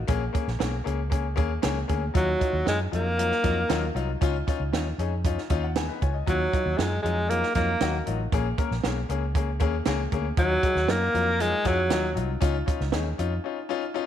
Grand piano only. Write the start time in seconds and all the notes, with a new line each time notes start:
0.08 A#3 C#4 G#4
0.33 A#3 C#4 G#4
0.59 A#3 C#4 G#4
0.84 A#3 C#4 G#4
1.10 A#3 C#4 G#4
1.36 A#3 C#4 G#4
1.62 A#3 C#4 G#4
1.88 A#3 C#4 G#4
2.14 F#3 D#4 F4
2.39 F#3 D#4 F4
2.65 F#3 D#4 F4
2.91 F#3 D#4 F4
3.17 F#3 D#4 F4
3.43 F#3 D#4 F4
3.69 F#3 D#4 F4
3.94 F#3 D#4 F4
4.21 C#4 D#4 F4
4.47 C#4 D#4 F4
4.73 C#4 D#4 F4
4.99 C#4 D#4 G#4
5.25 C#4 D#4 F4
5.50 C#4 D#4 F4 F5
5.64 F#5
5.76 B3 G#4 G#5
5.88 D#4 B4
6.02 F4 C#5 G#5
6.14 D#5
6.26 F#3 D#4 F4
6.52 F#3 D#4 F4
6.78 F#3 D#4 F4
7.04 F#3 D#4 F4
7.29 F#3 D#4 F4
7.55 F#3 D#4 F4
7.81 F#3 D#4 F#4
8.06 F#3 D#4 F4
8.32 A#3 C#4 G#4
8.58 A#3 C#4 A#4
8.84 A#3 C#4 G#4
9.09 A#3 C#4 G#4
9.35 A#3 C#4 G#4
9.60 A#3 C#4 G#4
9.86 A#3 C#4 G#4
10.12 A#3 C#4 G#4
10.37 F#3 D#4 F4
10.63 F#3 D#4 G#4
10.88 F#3 D#4 F4
11.13 F#3 D#4 F4
11.39 F#3 D#4 F4
11.64 F#3 D#4 F4
11.90 F#3 D#4 F4
12.15 F#3 D#4 F4
12.41 C#4 D#4 F4
12.66 C#4 D#4 F4
12.92 C#4 D#4 G#4
13.18 C#4 D#4 F4
13.44 C#4 D#4 F4
13.69 C#4 D#4 F4
13.94 C#4 D#4 F4